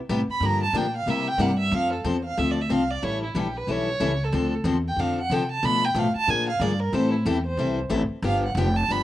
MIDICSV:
0, 0, Header, 1, 5, 480
1, 0, Start_track
1, 0, Tempo, 325556
1, 621, Time_signature, 4, 2, 24, 8
1, 13315, End_track
2, 0, Start_track
2, 0, Title_t, "Violin"
2, 0, Program_c, 0, 40
2, 453, Note_on_c, 0, 83, 89
2, 660, Note_on_c, 0, 82, 99
2, 682, Note_off_c, 0, 83, 0
2, 919, Note_off_c, 0, 82, 0
2, 928, Note_on_c, 0, 81, 89
2, 1136, Note_on_c, 0, 79, 81
2, 1158, Note_off_c, 0, 81, 0
2, 1403, Note_off_c, 0, 79, 0
2, 1423, Note_on_c, 0, 77, 82
2, 1614, Note_on_c, 0, 76, 80
2, 1637, Note_off_c, 0, 77, 0
2, 1877, Note_on_c, 0, 79, 106
2, 1899, Note_off_c, 0, 76, 0
2, 2074, Note_on_c, 0, 78, 93
2, 2096, Note_off_c, 0, 79, 0
2, 2337, Note_off_c, 0, 78, 0
2, 2346, Note_on_c, 0, 76, 90
2, 2562, Note_on_c, 0, 77, 107
2, 2584, Note_off_c, 0, 76, 0
2, 2839, Note_off_c, 0, 77, 0
2, 2846, Note_on_c, 0, 69, 47
2, 3039, Note_on_c, 0, 72, 69
2, 3061, Note_off_c, 0, 69, 0
2, 3304, Note_off_c, 0, 72, 0
2, 3313, Note_on_c, 0, 77, 96
2, 3518, Note_on_c, 0, 76, 89
2, 3540, Note_off_c, 0, 77, 0
2, 3695, Note_on_c, 0, 74, 78
2, 3717, Note_off_c, 0, 76, 0
2, 3852, Note_on_c, 0, 76, 79
2, 3874, Note_off_c, 0, 74, 0
2, 4004, Note_on_c, 0, 77, 90
2, 4026, Note_off_c, 0, 76, 0
2, 4284, Note_on_c, 0, 74, 88
2, 4306, Note_off_c, 0, 77, 0
2, 4484, Note_on_c, 0, 73, 90
2, 4506, Note_off_c, 0, 74, 0
2, 4760, Note_off_c, 0, 73, 0
2, 4775, Note_on_c, 0, 64, 60
2, 4999, Note_on_c, 0, 67, 77
2, 5021, Note_off_c, 0, 64, 0
2, 5267, Note_on_c, 0, 71, 86
2, 5289, Note_off_c, 0, 67, 0
2, 5465, Note_on_c, 0, 73, 100
2, 5487, Note_off_c, 0, 71, 0
2, 6246, Note_on_c, 0, 69, 80
2, 6268, Note_off_c, 0, 73, 0
2, 6699, Note_off_c, 0, 69, 0
2, 7194, Note_on_c, 0, 79, 85
2, 7367, Note_on_c, 0, 77, 87
2, 7389, Note_off_c, 0, 79, 0
2, 7641, Note_off_c, 0, 77, 0
2, 7680, Note_on_c, 0, 78, 92
2, 7864, Note_on_c, 0, 79, 84
2, 7886, Note_off_c, 0, 78, 0
2, 8129, Note_off_c, 0, 79, 0
2, 8136, Note_on_c, 0, 81, 96
2, 8329, Note_on_c, 0, 83, 115
2, 8351, Note_off_c, 0, 81, 0
2, 8622, Note_on_c, 0, 79, 96
2, 8644, Note_off_c, 0, 83, 0
2, 8819, Note_on_c, 0, 77, 86
2, 8841, Note_off_c, 0, 79, 0
2, 9080, Note_off_c, 0, 77, 0
2, 9089, Note_on_c, 0, 81, 115
2, 9284, Note_on_c, 0, 80, 100
2, 9306, Note_off_c, 0, 81, 0
2, 9557, Note_off_c, 0, 80, 0
2, 9569, Note_on_c, 0, 77, 90
2, 9751, Note_on_c, 0, 74, 78
2, 9773, Note_off_c, 0, 77, 0
2, 10020, Note_on_c, 0, 70, 85
2, 10042, Note_off_c, 0, 74, 0
2, 10225, Note_on_c, 0, 72, 98
2, 10247, Note_off_c, 0, 70, 0
2, 10495, Note_off_c, 0, 72, 0
2, 10504, Note_on_c, 0, 64, 46
2, 10708, Note_on_c, 0, 67, 64
2, 10730, Note_off_c, 0, 64, 0
2, 10988, Note_off_c, 0, 67, 0
2, 11000, Note_on_c, 0, 72, 85
2, 11439, Note_off_c, 0, 72, 0
2, 12161, Note_on_c, 0, 77, 88
2, 12415, Note_off_c, 0, 77, 0
2, 12469, Note_on_c, 0, 78, 77
2, 12644, Note_on_c, 0, 79, 89
2, 12666, Note_off_c, 0, 78, 0
2, 12919, Note_on_c, 0, 81, 102
2, 12941, Note_off_c, 0, 79, 0
2, 13136, Note_on_c, 0, 83, 98
2, 13159, Note_off_c, 0, 81, 0
2, 13315, Note_off_c, 0, 83, 0
2, 13315, End_track
3, 0, Start_track
3, 0, Title_t, "Steel-string acoustic guitar"
3, 0, Program_c, 1, 25
3, 138, Note_on_c, 1, 48, 83
3, 139, Note_on_c, 1, 55, 97
3, 146, Note_on_c, 1, 59, 85
3, 153, Note_on_c, 1, 64, 91
3, 155, Note_on_c, 1, 67, 98
3, 297, Note_off_c, 1, 48, 0
3, 297, Note_off_c, 1, 55, 0
3, 300, Note_off_c, 1, 59, 0
3, 304, Note_off_c, 1, 64, 0
3, 305, Note_off_c, 1, 67, 0
3, 618, Note_on_c, 1, 50, 71
3, 624, Note_on_c, 1, 62, 76
3, 626, Note_on_c, 1, 53, 73
3, 629, Note_on_c, 1, 58, 76
3, 634, Note_on_c, 1, 67, 72
3, 913, Note_off_c, 1, 50, 0
3, 916, Note_off_c, 1, 62, 0
3, 918, Note_off_c, 1, 53, 0
3, 919, Note_off_c, 1, 58, 0
3, 921, Note_off_c, 1, 67, 0
3, 1097, Note_on_c, 1, 50, 91
3, 1099, Note_on_c, 1, 53, 105
3, 1100, Note_on_c, 1, 62, 100
3, 1106, Note_on_c, 1, 58, 99
3, 1112, Note_on_c, 1, 67, 93
3, 1258, Note_off_c, 1, 50, 0
3, 1259, Note_off_c, 1, 53, 0
3, 1259, Note_off_c, 1, 62, 0
3, 1262, Note_off_c, 1, 58, 0
3, 1265, Note_off_c, 1, 67, 0
3, 1576, Note_on_c, 1, 48, 70
3, 1583, Note_on_c, 1, 55, 78
3, 1587, Note_on_c, 1, 58, 82
3, 1589, Note_on_c, 1, 64, 76
3, 1596, Note_on_c, 1, 67, 84
3, 1874, Note_off_c, 1, 48, 0
3, 1877, Note_off_c, 1, 55, 0
3, 1879, Note_off_c, 1, 58, 0
3, 1880, Note_off_c, 1, 64, 0
3, 1884, Note_off_c, 1, 67, 0
3, 2050, Note_on_c, 1, 48, 83
3, 2054, Note_on_c, 1, 55, 92
3, 2057, Note_on_c, 1, 64, 100
3, 2058, Note_on_c, 1, 58, 83
3, 2067, Note_on_c, 1, 67, 103
3, 2215, Note_off_c, 1, 48, 0
3, 2217, Note_off_c, 1, 55, 0
3, 2219, Note_off_c, 1, 58, 0
3, 2219, Note_off_c, 1, 64, 0
3, 2224, Note_off_c, 1, 67, 0
3, 2540, Note_on_c, 1, 53, 71
3, 2548, Note_on_c, 1, 60, 74
3, 2555, Note_on_c, 1, 62, 77
3, 2562, Note_on_c, 1, 69, 81
3, 2837, Note_off_c, 1, 53, 0
3, 2841, Note_off_c, 1, 60, 0
3, 2844, Note_off_c, 1, 62, 0
3, 2848, Note_off_c, 1, 69, 0
3, 3015, Note_on_c, 1, 53, 91
3, 3016, Note_on_c, 1, 62, 84
3, 3018, Note_on_c, 1, 60, 91
3, 3028, Note_on_c, 1, 69, 107
3, 3179, Note_off_c, 1, 53, 0
3, 3180, Note_off_c, 1, 60, 0
3, 3180, Note_off_c, 1, 62, 0
3, 3185, Note_off_c, 1, 69, 0
3, 3499, Note_on_c, 1, 60, 74
3, 3501, Note_on_c, 1, 53, 74
3, 3506, Note_on_c, 1, 62, 71
3, 3512, Note_on_c, 1, 69, 69
3, 3797, Note_off_c, 1, 60, 0
3, 3798, Note_off_c, 1, 53, 0
3, 3800, Note_off_c, 1, 62, 0
3, 3804, Note_off_c, 1, 69, 0
3, 3982, Note_on_c, 1, 60, 99
3, 3984, Note_on_c, 1, 53, 80
3, 3987, Note_on_c, 1, 62, 85
3, 4000, Note_on_c, 1, 69, 104
3, 4143, Note_off_c, 1, 60, 0
3, 4144, Note_off_c, 1, 53, 0
3, 4146, Note_off_c, 1, 62, 0
3, 4152, Note_off_c, 1, 69, 0
3, 4459, Note_on_c, 1, 52, 64
3, 4460, Note_on_c, 1, 61, 74
3, 4461, Note_on_c, 1, 55, 76
3, 4463, Note_on_c, 1, 69, 66
3, 4465, Note_on_c, 1, 64, 70
3, 4757, Note_off_c, 1, 52, 0
3, 4758, Note_off_c, 1, 55, 0
3, 4758, Note_off_c, 1, 61, 0
3, 4759, Note_off_c, 1, 69, 0
3, 4761, Note_off_c, 1, 64, 0
3, 4939, Note_on_c, 1, 52, 87
3, 4950, Note_on_c, 1, 64, 92
3, 4951, Note_on_c, 1, 61, 89
3, 4952, Note_on_c, 1, 55, 99
3, 4964, Note_on_c, 1, 69, 93
3, 5102, Note_off_c, 1, 52, 0
3, 5107, Note_off_c, 1, 64, 0
3, 5108, Note_off_c, 1, 55, 0
3, 5108, Note_off_c, 1, 61, 0
3, 5115, Note_off_c, 1, 69, 0
3, 5422, Note_on_c, 1, 52, 68
3, 5427, Note_on_c, 1, 61, 69
3, 5432, Note_on_c, 1, 55, 70
3, 5438, Note_on_c, 1, 64, 72
3, 5442, Note_on_c, 1, 69, 72
3, 5719, Note_off_c, 1, 52, 0
3, 5721, Note_off_c, 1, 61, 0
3, 5724, Note_off_c, 1, 55, 0
3, 5727, Note_off_c, 1, 64, 0
3, 5729, Note_off_c, 1, 69, 0
3, 5899, Note_on_c, 1, 52, 90
3, 5904, Note_on_c, 1, 61, 95
3, 5904, Note_on_c, 1, 64, 98
3, 5905, Note_on_c, 1, 55, 76
3, 5905, Note_on_c, 1, 69, 100
3, 6062, Note_off_c, 1, 52, 0
3, 6064, Note_off_c, 1, 61, 0
3, 6064, Note_off_c, 1, 64, 0
3, 6065, Note_off_c, 1, 55, 0
3, 6065, Note_off_c, 1, 69, 0
3, 6374, Note_on_c, 1, 50, 70
3, 6381, Note_on_c, 1, 53, 71
3, 6389, Note_on_c, 1, 60, 69
3, 6396, Note_on_c, 1, 62, 78
3, 6396, Note_on_c, 1, 69, 81
3, 6674, Note_off_c, 1, 50, 0
3, 6678, Note_off_c, 1, 53, 0
3, 6682, Note_off_c, 1, 60, 0
3, 6685, Note_off_c, 1, 62, 0
3, 6686, Note_off_c, 1, 69, 0
3, 6851, Note_on_c, 1, 50, 102
3, 6858, Note_on_c, 1, 53, 91
3, 6860, Note_on_c, 1, 60, 88
3, 6863, Note_on_c, 1, 62, 98
3, 6869, Note_on_c, 1, 69, 98
3, 7017, Note_off_c, 1, 50, 0
3, 7021, Note_off_c, 1, 53, 0
3, 7022, Note_off_c, 1, 60, 0
3, 7023, Note_off_c, 1, 62, 0
3, 7026, Note_off_c, 1, 69, 0
3, 7357, Note_on_c, 1, 50, 78
3, 7358, Note_on_c, 1, 53, 75
3, 7360, Note_on_c, 1, 60, 76
3, 7366, Note_on_c, 1, 62, 84
3, 7369, Note_on_c, 1, 69, 75
3, 7645, Note_off_c, 1, 50, 0
3, 7646, Note_off_c, 1, 53, 0
3, 7647, Note_off_c, 1, 60, 0
3, 7650, Note_off_c, 1, 62, 0
3, 7652, Note_off_c, 1, 69, 0
3, 7831, Note_on_c, 1, 50, 99
3, 7835, Note_on_c, 1, 53, 92
3, 7842, Note_on_c, 1, 62, 98
3, 7845, Note_on_c, 1, 60, 93
3, 7846, Note_on_c, 1, 69, 97
3, 7987, Note_off_c, 1, 50, 0
3, 7988, Note_off_c, 1, 53, 0
3, 7992, Note_off_c, 1, 62, 0
3, 7993, Note_off_c, 1, 60, 0
3, 7994, Note_off_c, 1, 69, 0
3, 8297, Note_on_c, 1, 47, 75
3, 8298, Note_on_c, 1, 57, 70
3, 8303, Note_on_c, 1, 69, 67
3, 8308, Note_on_c, 1, 53, 69
3, 8317, Note_on_c, 1, 62, 74
3, 8594, Note_off_c, 1, 47, 0
3, 8595, Note_off_c, 1, 57, 0
3, 8597, Note_off_c, 1, 69, 0
3, 8600, Note_off_c, 1, 53, 0
3, 8604, Note_off_c, 1, 62, 0
3, 8778, Note_on_c, 1, 47, 93
3, 8781, Note_on_c, 1, 53, 96
3, 8785, Note_on_c, 1, 62, 90
3, 8787, Note_on_c, 1, 57, 105
3, 8790, Note_on_c, 1, 69, 101
3, 8939, Note_off_c, 1, 47, 0
3, 8941, Note_off_c, 1, 53, 0
3, 8943, Note_off_c, 1, 62, 0
3, 8944, Note_off_c, 1, 57, 0
3, 8945, Note_off_c, 1, 69, 0
3, 9259, Note_on_c, 1, 53, 72
3, 9264, Note_on_c, 1, 50, 63
3, 9268, Note_on_c, 1, 58, 79
3, 9273, Note_on_c, 1, 68, 76
3, 9277, Note_on_c, 1, 62, 83
3, 9554, Note_off_c, 1, 53, 0
3, 9557, Note_off_c, 1, 50, 0
3, 9559, Note_off_c, 1, 58, 0
3, 9561, Note_off_c, 1, 68, 0
3, 9563, Note_off_c, 1, 62, 0
3, 9745, Note_on_c, 1, 58, 84
3, 9749, Note_on_c, 1, 53, 79
3, 9751, Note_on_c, 1, 50, 90
3, 9751, Note_on_c, 1, 68, 86
3, 9754, Note_on_c, 1, 62, 89
3, 9902, Note_off_c, 1, 58, 0
3, 9904, Note_off_c, 1, 50, 0
3, 9904, Note_off_c, 1, 53, 0
3, 9905, Note_off_c, 1, 68, 0
3, 9906, Note_off_c, 1, 62, 0
3, 10214, Note_on_c, 1, 52, 79
3, 10220, Note_on_c, 1, 55, 78
3, 10230, Note_on_c, 1, 60, 88
3, 10231, Note_on_c, 1, 69, 93
3, 10236, Note_on_c, 1, 64, 71
3, 10511, Note_off_c, 1, 52, 0
3, 10514, Note_off_c, 1, 55, 0
3, 10519, Note_off_c, 1, 60, 0
3, 10520, Note_off_c, 1, 69, 0
3, 10522, Note_off_c, 1, 64, 0
3, 10701, Note_on_c, 1, 52, 93
3, 10707, Note_on_c, 1, 60, 94
3, 10708, Note_on_c, 1, 69, 119
3, 10710, Note_on_c, 1, 55, 90
3, 10712, Note_on_c, 1, 64, 102
3, 10859, Note_off_c, 1, 52, 0
3, 10862, Note_off_c, 1, 60, 0
3, 10862, Note_off_c, 1, 69, 0
3, 10863, Note_off_c, 1, 55, 0
3, 10864, Note_off_c, 1, 64, 0
3, 11183, Note_on_c, 1, 52, 66
3, 11184, Note_on_c, 1, 55, 78
3, 11184, Note_on_c, 1, 60, 81
3, 11192, Note_on_c, 1, 64, 81
3, 11197, Note_on_c, 1, 69, 78
3, 11475, Note_off_c, 1, 52, 0
3, 11475, Note_off_c, 1, 55, 0
3, 11475, Note_off_c, 1, 60, 0
3, 11479, Note_off_c, 1, 64, 0
3, 11482, Note_off_c, 1, 69, 0
3, 11640, Note_on_c, 1, 52, 90
3, 11649, Note_on_c, 1, 55, 98
3, 11653, Note_on_c, 1, 60, 105
3, 11653, Note_on_c, 1, 64, 95
3, 11659, Note_on_c, 1, 69, 101
3, 11808, Note_off_c, 1, 52, 0
3, 11812, Note_off_c, 1, 55, 0
3, 11814, Note_off_c, 1, 60, 0
3, 11814, Note_off_c, 1, 64, 0
3, 11817, Note_off_c, 1, 69, 0
3, 12142, Note_on_c, 1, 50, 88
3, 12149, Note_on_c, 1, 53, 81
3, 12151, Note_on_c, 1, 67, 88
3, 12152, Note_on_c, 1, 59, 82
3, 12156, Note_on_c, 1, 62, 85
3, 12434, Note_off_c, 1, 50, 0
3, 12437, Note_off_c, 1, 53, 0
3, 12438, Note_off_c, 1, 67, 0
3, 12439, Note_off_c, 1, 59, 0
3, 12441, Note_off_c, 1, 62, 0
3, 12637, Note_on_c, 1, 50, 91
3, 12638, Note_on_c, 1, 53, 98
3, 12645, Note_on_c, 1, 59, 103
3, 12647, Note_on_c, 1, 62, 108
3, 12651, Note_on_c, 1, 67, 108
3, 12786, Note_off_c, 1, 50, 0
3, 12786, Note_off_c, 1, 53, 0
3, 12790, Note_off_c, 1, 59, 0
3, 12790, Note_off_c, 1, 62, 0
3, 12792, Note_off_c, 1, 67, 0
3, 13124, Note_on_c, 1, 50, 79
3, 13125, Note_on_c, 1, 59, 79
3, 13129, Note_on_c, 1, 53, 75
3, 13132, Note_on_c, 1, 62, 85
3, 13139, Note_on_c, 1, 67, 90
3, 13315, Note_off_c, 1, 50, 0
3, 13315, Note_off_c, 1, 53, 0
3, 13315, Note_off_c, 1, 59, 0
3, 13315, Note_off_c, 1, 62, 0
3, 13315, Note_off_c, 1, 67, 0
3, 13315, End_track
4, 0, Start_track
4, 0, Title_t, "Upright bass"
4, 0, Program_c, 2, 32
4, 137, Note_on_c, 2, 45, 90
4, 403, Note_off_c, 2, 45, 0
4, 594, Note_on_c, 2, 43, 92
4, 1068, Note_off_c, 2, 43, 0
4, 1077, Note_on_c, 2, 46, 93
4, 1556, Note_off_c, 2, 46, 0
4, 1565, Note_on_c, 2, 48, 75
4, 2026, Note_off_c, 2, 48, 0
4, 2035, Note_on_c, 2, 43, 98
4, 2517, Note_off_c, 2, 43, 0
4, 2529, Note_on_c, 2, 41, 97
4, 3004, Note_off_c, 2, 41, 0
4, 3012, Note_on_c, 2, 40, 95
4, 3486, Note_off_c, 2, 40, 0
4, 3504, Note_on_c, 2, 38, 91
4, 3963, Note_off_c, 2, 38, 0
4, 3972, Note_on_c, 2, 36, 89
4, 4446, Note_off_c, 2, 36, 0
4, 4466, Note_on_c, 2, 33, 91
4, 4925, Note_off_c, 2, 33, 0
4, 4934, Note_on_c, 2, 34, 92
4, 5402, Note_off_c, 2, 34, 0
4, 5411, Note_on_c, 2, 35, 76
4, 5886, Note_off_c, 2, 35, 0
4, 5897, Note_on_c, 2, 37, 83
4, 6369, Note_off_c, 2, 37, 0
4, 6377, Note_on_c, 2, 38, 98
4, 6833, Note_off_c, 2, 38, 0
4, 6842, Note_on_c, 2, 40, 103
4, 7311, Note_off_c, 2, 40, 0
4, 7319, Note_on_c, 2, 41, 84
4, 7798, Note_off_c, 2, 41, 0
4, 7810, Note_on_c, 2, 48, 91
4, 8284, Note_off_c, 2, 48, 0
4, 8298, Note_on_c, 2, 47, 98
4, 8757, Note_off_c, 2, 47, 0
4, 8765, Note_on_c, 2, 45, 103
4, 9038, Note_off_c, 2, 45, 0
4, 9254, Note_on_c, 2, 46, 87
4, 9716, Note_off_c, 2, 46, 0
4, 9725, Note_on_c, 2, 43, 98
4, 10199, Note_off_c, 2, 43, 0
4, 10212, Note_on_c, 2, 45, 96
4, 10682, Note_off_c, 2, 45, 0
4, 10697, Note_on_c, 2, 40, 100
4, 11157, Note_off_c, 2, 40, 0
4, 11165, Note_on_c, 2, 36, 82
4, 11634, Note_off_c, 2, 36, 0
4, 11643, Note_on_c, 2, 33, 93
4, 11915, Note_off_c, 2, 33, 0
4, 12125, Note_on_c, 2, 31, 104
4, 12594, Note_off_c, 2, 31, 0
4, 12603, Note_on_c, 2, 29, 103
4, 13076, Note_off_c, 2, 29, 0
4, 13098, Note_on_c, 2, 31, 78
4, 13315, Note_off_c, 2, 31, 0
4, 13315, End_track
5, 0, Start_track
5, 0, Title_t, "Muted upright bass strokes"
5, 414, Note_on_c, 9, 29, 40
5, 562, Note_off_c, 9, 29, 0
5, 9069, Note_on_c, 9, 29, 38
5, 9217, Note_off_c, 9, 29, 0
5, 11926, Note_on_c, 9, 29, 41
5, 12073, Note_off_c, 9, 29, 0
5, 13315, End_track
0, 0, End_of_file